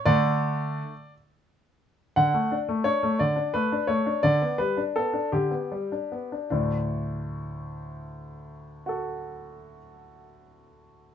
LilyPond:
<<
  \new Staff \with { instrumentName = "Grand piano" } { \time 6/8 \key d \major \tempo 4. = 53 << { d''2~ d''8 r8 | fis''4 cis''8 d''8 b'8 cis''8 | d''8 b'8 a'8 g'4. | d'2.~ |
d'2. | } \\ { r2. | r2. | r2. | r2. |
<fis' a'>2. | } >> }
  \new Staff \with { instrumentName = "Grand piano" } { \time 6/8 \key d \major <d a d'>4. r4. | d16 a16 d'16 a16 d'16 a16 d16 d'16 a16 d'16 a16 d'16 | d16 b16 g16 d'16 b16 d'16 d16 b16 g16 d'16 b16 d'16 | <d, a,>2.~ |
<d, a,>2. | }
>>